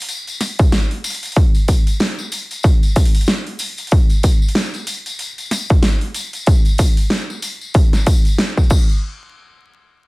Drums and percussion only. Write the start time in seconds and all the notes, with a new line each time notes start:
0.02 open hi-hat
0.09 open hi-hat, tambourine
0.27 open hi-hat, tambourine
0.41 snare, open hi-hat, tambourine
0.59 kick, open hi-hat, tambourine
0.72 snare, open hi-hat, tambourine
0.91 open hi-hat
1.04 open hi-hat, tambourine
1.10 open hi-hat
1.15 open hi-hat
1.23 open hi-hat, tambourine
1.26 open hi-hat
1.32 open hi-hat
1.36 kick, open hi-hat, tambourine
1.54 open hi-hat, tambourine
1.68 kick, open hi-hat, tambourine
1.87 open hi-hat, tambourine
2.00 snare, open hi-hat, tambourine
2.18 tambourine
2.32 open hi-hat, tambourine
2.51 open hi-hat, tambourine
2.63 kick, open hi-hat, tambourine
2.83 open hi-hat, tambourine
2.96 kick, open hi-hat, tambourine
3.05 open hi-hat
3.15 open hi-hat, tambourine
3.21 open hi-hat
3.26 snare, open hi-hat, tambourine
3.47 open hi-hat
3.59 open hi-hat, tambourine
3.77 open hi-hat, tambourine
3.87 open hi-hat
3.91 kick, open hi-hat, tambourine
3.98 open hi-hat
4.10 open hi-hat, tambourine
4.23 kick, open hi-hat, tambourine
4.42 tambourine
4.49 open hi-hat
4.55 snare, tambourine
4.74 open hi-hat, tambourine
4.87 open hi-hat, tambourine
5.06 open hi-hat, tambourine
5.19 open hi-hat, tambourine
5.38 open hi-hat, tambourine
5.51 snare, open hi-hat, tambourine
5.70 kick, open hi-hat
5.83 snare, open hi-hat, tambourine
6.01 open hi-hat
6.14 open hi-hat, tambourine
6.33 open hi-hat, tambourine
6.47 kick, open hi-hat, tambourine
6.65 open hi-hat, tambourine
6.78 kick, open hi-hat, tambourine
6.97 open hi-hat, tambourine
7.10 snare, open hi-hat, tambourine
7.30 tambourine
7.42 open hi-hat, tambourine
7.61 tambourine
7.74 kick, open hi-hat, tambourine
7.93 snare, open hi-hat, tambourine
8.06 kick, open hi-hat, tambourine
8.25 open hi-hat, tambourine
8.38 snare, open hi-hat, tambourine
8.57 kick, open hi-hat, tambourine
8.64 open hi-hat
8.70 kick, crash, tambourine
8.89 tambourine